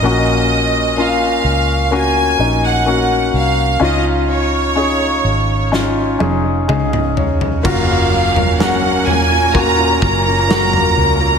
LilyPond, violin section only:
\new Staff \with { instrumentName = "Violin section" } { \time 4/4 \key ges \lydian \tempo 4 = 63 ees''4 f''4 aes''8. ges''8. f''8 | ees''8 des''4. r2 | f''4 ges''8 aes''8 bes''8 bes''4. | }